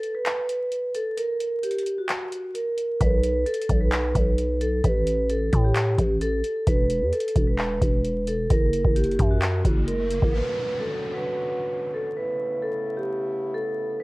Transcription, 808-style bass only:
3.01 3.45 B1 loud
3.69 4.13 B1 loud
4.15 4.81 B1 loud
4.84 5.50 A1 loud
5.53 5.97 A2 loud
5.98 6.42 A1 loud
6.67 7.03 E1 loud
7.01 7.12 E2 loud
7.36 7.80 E1 loud
7.81 8.47 E1 loud
8.50 8.83 F#1 loud
8.85 9.18 F#1 loud
9.19 9.63 F#2 loud
9.65 10.20 F#1 loud
10.22 10.33 F#1 loud

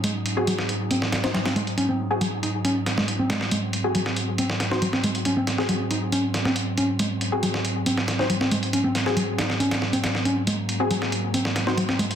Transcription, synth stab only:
0.37 0.45 C4 loud
0.37 0.45 F#4 medium
0.37 0.45 G#4 loud
1.24 1.32 C4 medium
1.24 1.32 F#4 medium
1.24 1.32 C5 medium
2.11 2.19 C4 medium
2.11 2.19 F#4 medium
2.11 2.19 G#4 loud
3.84 3.93 C4 medium
3.84 3.93 F#4 medium
3.84 3.93 G#4 loud
4.71 4.80 C4 medium
4.71 4.80 F#4 medium
4.71 4.80 C5 loud
5.58 5.67 C4 medium
5.58 5.67 F#4 medium
5.58 5.67 G#4 loud
7.32 7.40 C4 medium
7.32 7.40 F#4 medium
7.32 7.40 G#4 loud
8.19 8.27 C4 medium
8.19 8.27 F#4 medium
8.19 8.27 C5 medium
9.06 9.14 C4 medium
9.06 9.14 F#4 medium
9.06 9.14 G#4 loud
10.80 10.88 C4 loud
10.80 10.88 F#4 medium
10.80 10.88 G#4 loud
11.67 11.75 C4 medium
11.67 11.75 F#4 medium
11.67 11.75 C5 medium

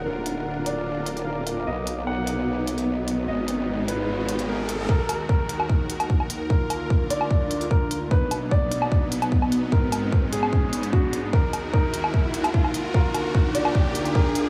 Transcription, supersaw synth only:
0.00 1.64 A#4 medium
0.06 1.65 D3 medium
0.06 1.65 D4 medium
0.06 1.65 F4 medium
1.67 3.26 F#3 medium
1.67 4.86 B3 medium
1.67 3.26 D#4 medium
3.28 4.87 G#3 medium
3.28 4.87 D#4 medium
4.89 6.48 D#2 medium
4.89 6.48 D#3 medium
4.89 6.48 F#4 medium
4.89 8.08 A#4 medium
6.50 8.10 D2 medium
6.50 8.10 D3 medium
6.50 8.10 F4 medium
8.11 9.71 B2 medium
8.11 9.71 F#3 medium
8.11 11.30 B3 medium
8.11 11.30 D#4 medium
9.72 11.32 G#2 medium
9.72 11.32 G#3 medium
11.33 12.93 D#2 medium
11.33 12.93 D#3 medium
11.33 12.93 F#4 medium
11.33 14.49 A#4 medium
12.94 14.49 D2 medium
12.94 14.49 D3 medium
12.94 14.49 F4 medium

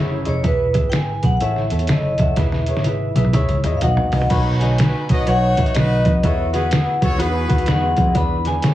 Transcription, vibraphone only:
0.29 0.46 C#5 medium
0.47 0.91 B4 medium
0.90 0.93 G5 medium
0.95 1.25 G#5 loud
1.25 1.35 F#5 medium
1.37 1.41 F#5 medium
1.42 1.91 E5 medium
1.91 2.22 D#5 medium
2.20 3.12 E5 medium
3.77 3.82 F5 medium
3.83 4.32 F#5 medium
4.30 4.44 B5 loud
4.60 5.05 G#5 medium
5.28 5.59 F#5 medium
5.59 5.76 E5 medium
5.75 6.24 D#5 medium
6.24 6.55 E5 medium
6.53 6.98 F#5 medium
7.69 8.18 F#5 medium
8.17 8.47 B5 loud
8.47 8.74 G#5 loud

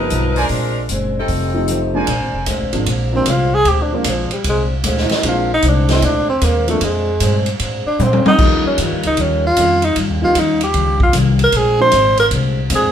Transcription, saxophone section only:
0.00 0.39 F3 medium
0.00 0.39 D#4 medium
0.00 0.39 A#4 medium
0.00 0.39 B4 medium
0.40 0.86 G#3 medium
0.40 0.87 D4 medium
0.40 0.86 F4 medium
0.40 0.87 A#4 medium
1.19 1.92 G3 medium
1.19 1.92 C4 medium
1.19 1.92 D#4 medium
1.19 1.92 A4 medium

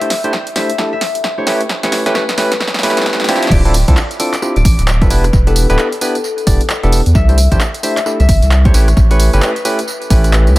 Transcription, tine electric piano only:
0.01 0.10 A3 medium
0.01 0.10 D4 medium
0.01 0.10 E4 medium
0.01 0.10 G4 medium
0.01 0.10 C5 medium
0.24 0.33 A3 medium
0.24 0.33 D4 medium
0.24 0.33 E4 medium
0.24 0.33 G4 medium
0.24 0.33 C5 loud
0.56 0.70 A3 medium
0.56 0.70 D4 medium
0.56 0.70 E4 medium
0.56 0.70 G4 medium
0.56 0.70 C5 medium
0.79 0.92 A3 medium
0.79 0.92 D4 medium
0.79 0.92 E4 medium
0.79 0.92 G4 medium
0.79 0.92 A4 medium
1.38 1.45 A3 medium
1.38 1.46 D4 medium
1.38 1.45 E4 medium
1.38 1.46 G4 medium
1.38 1.45 C5 medium
1.47 1.60 A3 medium
1.47 1.60 C#4 medium
1.47 1.60 E4 medium
1.47 1.60 G4 medium
1.47 1.60 B4 medium
1.83 2.03 A3 medium
1.83 2.03 C#4 medium
1.83 2.03 E4 medium
1.83 2.03 G4 medium
1.83 2.03 B4 medium
2.06 2.23 A3 medium
2.06 2.23 C#4 medium
2.06 2.23 E4 medium
2.06 2.23 G4 medium
2.06 2.23 B4 loud
2.38 2.51 A3 medium
2.38 2.51 C#4 medium
2.38 2.51 E4 medium
2.38 2.51 G4 medium
2.38 2.51 B4 loud
2.83 3.27 A3 loud
2.83 3.27 C#4 medium
2.83 3.27 E4 medium
2.83 3.27 G4 medium
2.83 3.27 B4 loud
3.29 3.62 C4 loud
3.29 3.62 D4 medium
3.29 3.62 E4 medium
3.29 3.62 F4 medium
3.29 3.62 G4 loud
3.65 3.74 C4 medium
3.65 3.74 D4 medium
3.65 3.74 E4 medium
3.65 3.74 F4 medium
3.65 3.74 A4 medium
3.88 3.97 C4 medium
3.88 3.97 D4 medium
3.88 3.97 E4 medium
3.88 3.97 F4 medium
3.88 3.97 A4 loud
4.20 4.33 C4 medium
4.20 4.33 D4 medium
4.20 4.33 E4 medium
4.20 4.33 F4 medium
4.20 4.33 A4 medium
4.42 4.56 C4 medium
4.42 4.56 D4 medium
4.42 4.56 E4 medium
4.42 4.56 F4 medium
4.42 4.56 G4 medium
5.02 5.09 C4 medium
5.02 5.09 D4 medium
5.02 5.09 E4 medium
5.02 5.09 F4 medium
5.02 5.09 A4 medium
5.10 5.24 B3 medium
5.10 5.24 D4 medium
5.10 5.24 E4 medium
5.10 5.24 G4 medium
5.10 5.24 B4 medium
5.47 5.66 B3 medium
5.47 5.66 D4 medium
5.47 5.66 E4 medium
5.47 5.66 G4 medium
5.47 5.66 B4 medium
5.70 5.87 B3 medium
5.70 5.87 D4 medium
5.70 5.87 E4 medium
5.70 5.87 G4 medium
5.70 5.87 B4 loud
6.01 6.15 B3 loud
6.01 6.15 D4 medium
6.01 6.15 E4 medium
6.01 6.15 G4 medium
6.01 6.15 B4 loud
6.47 6.61 B3 medium
6.47 6.61 D4 medium
6.47 6.61 E4 medium
6.47 6.61 G4 medium
6.47 6.61 D5 medium
6.83 7.00 B3 medium
6.83 7.00 D4 medium
6.83 7.00 E4 medium
6.83 7.00 G4 medium
6.83 7.00 A4 loud
7.29 7.38 A3 medium
7.29 7.38 D4 medium
7.29 7.38 E4 medium
7.29 7.38 G4 medium
7.29 7.38 C5 medium
7.52 7.60 A3 loud
7.52 7.60 D4 medium
7.52 7.60 E4 medium
7.52 7.60 G4 medium
7.52 7.60 C5 loud
7.83 7.97 A3 medium
7.83 7.97 D4 medium
7.83 7.97 E4 medium
7.83 7.97 G4 medium
7.83 7.97 C5 medium
8.06 8.20 A3 medium
8.06 8.20 D4 medium
8.06 8.20 E4 medium
8.06 8.20 G4 medium
8.06 8.20 A4 medium
8.65 8.73 A3 medium
8.65 8.73 D4 medium
8.65 8.73 E4 medium
8.65 8.73 G4 medium
8.65 8.73 C5 medium
8.74 8.88 A3 medium
8.74 8.88 C#4 medium
8.74 8.88 E4 medium
8.74 8.88 G4 medium
8.74 8.88 B4 medium
9.11 9.30 A3 medium
9.11 9.30 C#4 medium
9.11 9.30 E4 medium
9.11 9.30 G4 medium
9.11 9.30 B4 loud
9.33 9.50 A3 medium
9.33 9.50 C#4 medium
9.33 9.50 E4 medium
9.33 9.50 G4 medium
9.33 9.50 B4 loud
9.65 9.79 A3 loud
9.65 9.79 C#4 medium
9.65 9.79 E4 medium
9.65 9.79 G4 medium
9.65 9.79 B4 loud
10.10 10.54 A3 loud
10.10 10.54 C#4 medium
10.10 10.54 E4 medium
10.10 10.54 G4 medium
10.10 10.54 B4 loud

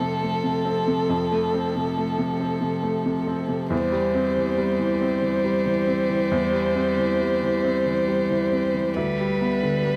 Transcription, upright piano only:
0.00 1.07 F2 medium
0.00 0.44 C3 soft
0.00 0.23 A3 soft
0.00 0.65 C4 soft
0.23 0.58 A3 soft
0.44 0.79 C3 soft
0.65 1.01 C4 soft
0.88 1.23 C3 soft
1.09 3.67 F2 medium
1.32 1.67 A3 soft
1.54 1.89 C4 soft
1.76 2.11 C3 soft
1.98 2.32 A3 soft
2.18 2.54 C3 medium
2.40 2.75 C4 soft
2.61 2.97 C3 soft
2.83 3.19 A3 soft
3.06 3.41 C3 soft
3.27 3.62 C4 soft
3.48 3.71 C3 soft
3.70 6.27 E2 medium
3.92 4.28 G3 soft
4.14 4.50 C4 medium
4.37 4.71 E3 soft
4.58 4.93 G3 soft
4.79 5.14 E3 medium
5.01 5.36 C4 soft
5.22 5.57 E3 soft
5.44 5.79 G3 soft
5.66 6.01 E3 soft
5.87 6.22 C4 soft
6.09 6.44 E3 soft
6.31 8.91 E2 medium
6.53 6.88 G3 soft
6.76 7.11 C4 soft
6.98 7.33 E3 soft
7.21 7.55 G3 soft
7.43 7.78 E3 soft
7.64 7.99 C4 soft
7.86 8.21 E3 soft
8.08 8.43 G3 soft
8.30 8.65 E3 soft
8.52 8.87 C4 soft
8.74 8.96 E3 soft
8.96 9.96 D2 medium
9.19 9.53 G3 soft
9.41 9.76 B3 soft
9.63 9.96 D3 soft
9.85 9.96 G3 soft

